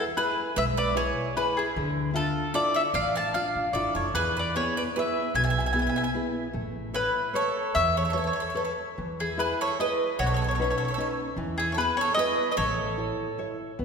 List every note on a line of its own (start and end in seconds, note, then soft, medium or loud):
0.17 0.49 E4 soft
0.17 0.49 G#4 soft
0.17 0.55 G#4 medium
0.17 0.58 B4 medium
0.17 0.50 B4 soft
0.56 1.08 B1 loud
0.56 0.95 G#3 medium
0.56 0.62 B4 medium
0.56 0.63 E5 loud
0.77 0.95 B4 medium
0.77 0.95 D5 medium
0.95 1.28 E4 medium
0.95 1.28 G#4 soft
0.95 1.34 G#4 medium
0.95 1.28 B4 medium
0.95 1.34 C#5 medium
1.36 1.68 E4 soft
1.36 1.68 G#4 soft
1.36 1.57 G#4 medium
1.36 1.56 B4 medium
1.36 1.69 B4 medium
1.57 1.75 E4 medium
1.57 1.75 G#4 medium
1.76 2.27 D2 loud
1.76 2.13 D3 medium
2.14 2.46 D4 medium
2.14 2.46 F4 medium
2.14 2.53 F4 medium
2.14 2.52 A4 medium
2.14 2.46 E5 soft
2.54 2.86 D4 medium
2.54 2.86 E4 medium
2.54 2.86 F4 medium
2.54 2.74 A4 medium
2.54 2.77 D5 medium
2.74 2.80 C#5 medium
2.74 2.81 E5 medium
2.94 3.34 A1 loud
2.94 3.33 A3 medium
2.94 3.14 D5 medium
2.94 3.17 F5 loud
3.15 3.33 F5 medium
3.15 3.34 A5 medium
3.34 3.66 D4 medium
3.34 3.67 F4 medium
3.34 3.72 D5 medium
3.34 3.76 F5 medium
3.56 3.73 A1 medium
3.73 3.94 G#1 medium
3.73 4.07 D4 medium
3.73 4.07 E4 soft
3.73 4.08 F4 soft
3.73 3.94 A4 medium
3.73 3.94 D5 medium
3.95 4.13 F1 medium
3.95 4.13 A4 medium
3.95 4.14 C#5 medium
4.14 4.67 E2 medium
4.14 4.55 E3 soft
4.14 4.36 G#4 medium
4.14 4.35 B4 loud
4.37 4.55 B4 medium
4.37 4.56 D5 medium
4.55 4.88 B3 medium
4.55 4.88 E4 soft
4.55 4.76 G#4 medium
4.55 4.88 G#4 medium
4.55 4.76 C#5 medium
4.77 4.82 B4 medium
4.77 4.82 D5 medium
4.96 5.28 B3 soft
4.96 5.28 E4 soft
4.96 5.28 G#4 medium
4.96 5.33 B4 medium
4.96 5.35 E5 medium
5.34 5.86 B1 loud
5.34 5.74 B2 medium
5.34 5.42 E5 medium
5.34 5.43 G#5 medium
5.44 5.49 E5 medium
5.44 5.50 G#5 medium
5.50 5.58 E5 medium
5.50 5.57 G#5 medium
5.59 5.65 E5 soft
5.59 5.65 G#5 soft
5.66 5.72 E5 soft
5.66 5.72 G#5 soft
5.73 6.06 B3 medium
5.73 6.07 E4 medium
5.73 6.07 G#4 medium
5.73 5.78 E5 soft
5.73 5.79 G#5 medium
5.79 5.86 E5 soft
5.79 5.88 G#5 medium
5.87 5.94 E5 soft
5.87 5.96 G#5 medium
5.96 6.02 E5 medium
5.96 6.02 G#5 medium
6.03 6.10 E5 medium
6.03 6.09 G#5 medium
6.14 6.46 B3 soft
6.14 6.47 E4 medium
6.14 6.47 G#4 medium
6.53 7.07 A1 medium
6.53 6.93 A3 medium
6.94 7.32 E4 medium
6.94 7.27 A4 medium
6.94 7.27 B4 soft
6.94 7.33 B4 loud
6.94 7.27 C#5 medium
7.33 7.66 A4 medium
7.33 7.73 A4 medium
7.33 7.67 B4 medium
7.33 7.67 C#5 medium
7.33 7.73 C#5 medium
7.74 8.29 E2 loud
7.74 8.14 E3 medium
7.74 7.96 C#5 medium
7.74 7.95 E5 loud
7.97 8.04 A4 medium
7.97 8.04 C#5 medium
8.05 8.09 A4 soft
8.05 8.11 C#5 soft
8.10 8.16 A4 medium
8.10 8.48 A4 medium
8.10 8.18 C#5 medium
8.14 8.23 A4 soft
8.14 8.48 B4 soft
8.14 8.48 C#5 medium
8.19 8.26 C#5 soft
8.24 8.32 A4 soft
8.24 8.34 C#5 medium
8.33 8.39 A4 soft
8.33 8.41 C#5 medium
8.40 8.48 A4 medium
8.40 8.48 C#5 soft
8.49 8.56 A4 soft
8.49 8.54 C#5 soft
8.54 8.88 A4 medium
8.54 8.64 A4 soft
8.54 8.89 B4 soft
8.54 8.63 C#5 medium
8.54 8.90 C#5 soft
8.64 8.72 A4 soft
8.64 8.72 C#5 soft
8.98 9.51 E2 medium
8.98 9.38 E3 medium
9.20 9.38 E4 medium
9.20 9.38 G#4 medium
9.37 9.71 E4 medium
9.37 9.71 G#4 soft
9.37 9.60 G#4 medium
9.37 9.71 B4 medium
9.37 9.61 B4 medium
9.61 9.78 A4 medium
9.61 9.79 C#5 medium
9.79 10.11 E4 soft
9.79 10.12 G#4 medium
9.79 10.12 B4 soft
9.79 10.17 B4 medium
9.79 10.17 D#5 medium
10.19 10.71 B1 loud
10.19 10.58 B2 medium
10.19 10.27 F#4 medium
10.19 10.25 C#5 loud
10.26 10.35 A4 medium
10.26 10.33 C#5 medium
10.34 10.43 A4 medium
10.34 10.41 C#5 medium
10.42 10.50 A4 soft
10.42 10.47 C#5 medium
10.48 10.54 A4 medium
10.48 10.54 C#5 medium
10.55 10.91 C#4 medium
10.55 10.63 A4 soft
10.55 10.61 C#5 medium
10.59 10.91 D#4 soft
10.59 10.91 B4 medium
10.59 10.69 C#5 medium
10.64 10.70 A4 soft
10.70 10.77 A4 soft
10.70 10.76 C#5 medium
10.78 10.85 A4 medium
10.78 10.84 C#5 medium
10.85 10.93 A4 soft
10.85 10.90 C#5 soft
10.91 10.99 A4 medium
10.91 10.97 C#5 soft
10.98 11.29 C#4 medium
10.98 11.30 D#4 medium
10.98 11.07 A4 soft
10.98 11.30 B4 medium
10.98 11.06 C#5 soft
11.36 11.88 E2 loud
11.36 11.76 E3 medium
11.58 11.72 E4 medium
11.58 11.71 G#4 medium
11.72 11.78 A4 medium
11.72 11.77 C#5 medium
11.77 12.09 B3 soft
11.77 12.09 E4 medium
11.77 12.09 G#4 medium
11.77 11.99 G#4 medium
11.77 11.97 B4 medium
11.97 12.14 C#5 loud
12.01 12.17 A4 medium
12.14 12.49 B3 medium
12.14 12.49 E4 medium
12.14 12.49 G#4 medium
12.14 12.47 D#5 loud
12.19 12.50 B4 loud
12.51 12.56 B4 medium
12.51 12.57 D#5 medium
12.56 13.10 A1 loud
12.56 12.96 A3 medium
12.56 13.56 A4 medium
12.56 13.56 C#5 medium
12.97 13.30 E4 soft
12.97 13.31 A4 soft
12.97 13.31 C#5 soft
13.38 13.71 E4 soft
13.38 13.71 A4 soft
13.38 13.71 C#5 medium
13.79 13.85 B1 medium
13.79 13.85 B3 medium